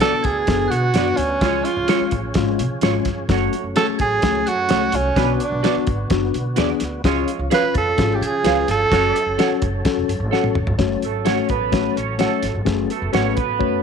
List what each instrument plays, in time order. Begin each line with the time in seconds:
Already playing: tonewheel organ D3 B3 F#4
0.00 tine electric piano B3 D4 A4, clean electric guitar F#4 B4 D5, tenor saxophone A4, glockenspiel A6, snare, closed hi-hat
0.12 muted upright bass stroke
0.23 upright bass D2, tenor saxophone G#4, glockenspiel G#6, kick, closed hi-hat
0.47 upright bass F#1, tine electric piano B3 D4 A4, kick, snare, closed hi-hat
0.68 upright bass B2, tenor saxophone F#4, glockenspiel F#6, closed hi-hat
0.94 upright bass F#2, tine electric piano B3 D4 F#4, clean electric guitar F#4 B4 D5, snare, closed hi-hat
1.16 upright bass D2, tenor saxophone C#4, glockenspiel C#6, closed hi-hat
1.41 upright bass C#2, tonewheel organ F3 C#4 G#4, horn section G#3 F4 C#5, tine electric piano G#3 C#4 F4, kick, snare, closed hi-hat
1.63 tenor saxophone F4, glockenspiel F6, closed hi-hat
1.77 upright bass C#2
1.88 tine electric piano G#3 C#4 F4, clean electric guitar F4 G#4 C#5, snare, closed hi-hat
2.01 muted upright bass stroke
2.11 upright bass A1, kick, closed hi-hat
2.34 upright bass G#1, tine electric piano G#3 C#4 F4, kick, snare, closed hi-hat
2.59 upright bass C#3, closed hi-hat
2.81 upright bass G#1, tine electric piano G#3 C#4 F4, clean electric guitar F4 G#4 C#5, snare, closed hi-hat
3.05 upright bass G1, kick, snare, closed hi-hat
3.28 upright bass F#1, tonewheel organ F#3 A3, tine electric piano A3 C#4 F#4, horn section A3 F#4 C#5, kick, snare, closed hi-hat
3.53 closed hi-hat
3.64 upright bass F#1
3.76 tine electric piano A3 C#4 G#4, clean electric guitar F#4 A4 C#5, tenor saxophone A4, glockenspiel A6, snare, closed hi-hat
3.88 muted upright bass stroke
3.98 upright bass A1, tenor saxophone G#4, glockenspiel G#6, kick, closed hi-hat
4.22 upright bass C#2, tine electric piano A3 C#4 G#4, kick, snare, closed hi-hat
4.46 upright bass F#2, tenor saxophone F#4, glockenspiel F#6, closed hi-hat
4.69 upright bass C#2, tine electric piano A3 C#4 F#4, clean electric guitar F#4 A4 C#5, snare, closed hi-hat
4.92 upright bass C2, tenor saxophone C#4, glockenspiel C#6, closed hi-hat
5.16 upright bass B1, tonewheel organ D3 B3 F#4, horn section F#3 D4 B4, tine electric piano B3 D4 F#4, kick, snare, closed hi-hat
5.32 tenor saxophone C#4, glockenspiel C#6
5.40 tenor saxophone D4, glockenspiel D6, closed hi-hat
5.52 upright bass B1
5.63 tine electric piano B3 D4 F#4, clean electric guitar F#4 B4 D5, snare, closed hi-hat
5.76 muted upright bass stroke
5.87 upright bass G#1, kick, closed hi-hat
6.10 upright bass F#1, tine electric piano B3 D4 F#4, kick, snare, closed hi-hat
6.34 upright bass B2, closed hi-hat
6.56 upright bass D#2, tine electric piano B3 D4 G#4, clean electric guitar F#4 B4 D5, snare, closed hi-hat
6.80 upright bass D2, snare, closed hi-hat
7.04 upright bass C#2, tonewheel organ F3 C#4 F4, horn section G#3 F4 C#5, tine electric piano C#4 F4 G#4, kick, snare, closed hi-hat
7.28 closed hi-hat
7.39 upright bass C#2
7.50 tine electric piano C#4 F4 B4, clean electric guitar G#4 C#5 F5, tenor saxophone B4, glockenspiel B6, snare, closed hi-hat
7.62 muted upright bass stroke
7.74 upright bass F2, tenor saxophone A4, glockenspiel A6, kick, closed hi-hat
7.98 upright bass G#1, tine electric piano C#4 F4 G#4, kick, snare, closed hi-hat
8.14 tenor saxophone G4, glockenspiel G6
8.21 upright bass C#3, glockenspiel G#6, closed hi-hat
8.25 tenor saxophone G#4
8.44 upright bass C#2, tine electric piano C#4 F4 B4, clean electric guitar G#4 C#5 F5, snare, closed hi-hat
8.68 upright bass G1, tenor saxophone A4, glockenspiel A6, snare, closed hi-hat
8.90 upright bass F#1, tonewheel organ F#3 C#4 A4, horn section A3 F#4 C#5, tine electric piano C#4 F#4 A4, kick, snare, closed hi-hat
9.16 closed hi-hat
9.26 upright bass F#1
9.38 tine electric piano C#4 F#4 A4, clean electric guitar A4 C#5 F#5, snare, closed hi-hat
9.50 muted upright bass stroke
9.62 upright bass F#1, kick, closed hi-hat
9.85 tine electric piano C#4 F#4 A4, kick, snare, closed hi-hat
9.97 upright bass F1
10.09 upright bass F#1, closed hi-hat
10.20 upright bass G#1
10.31 tine electric piano C#4 F#4 A4, clean electric guitar A4 C#5 F#5, snare
10.43 upright bass A1, high tom
10.55 upright bass G#1, mid tom
10.67 upright bass G1, floor tom
10.78 upright bass F#1, tonewheel organ F#3 C#4 A4, tine electric piano A3 C#4 F#4 C#5, kick, snare, closed hi-hat
11.02 upright bass G#1, horn section A3 A4, closed hi-hat
11.25 tine electric piano A3 C#4 F#4 C#5, horn section C#4 C#5, clean electric guitar A4 C#5 F#5, snare, closed hi-hat
11.49 upright bass A1, horn section B3 B4, kick, closed hi-hat
11.72 tine electric piano A3 C#4 F#4 C#5, kick, snare, closed hi-hat
11.96 upright bass A1, horn section C#4 C#5, closed hi-hat
12.18 tine electric piano A3 C#4 F#4 C#5, horn section A3 A4, clean electric guitar A4 C#5 F#5, snare, closed hi-hat
12.43 upright bass G#1, snare, closed hi-hat
12.55 upright bass G1
12.65 upright bass F#1, tine electric piano A3 C#4 F#4 G#4, tonewheel organ B3, kick, snare, closed hi-hat
12.90 horn section A3 A4, closed hi-hat
13.02 upright bass F#1
13.12 upright bass G#1, tine electric piano A3 C#4 F#4 B4, horn section C#4 C#5, clean electric guitar A4 C#5 F#5, snare, closed hi-hat
13.35 upright bass A1, horn section B3 B4, kick, closed hi-hat
13.59 upright bass F#2, tine electric piano A3 C#4 F#4 C#5, kick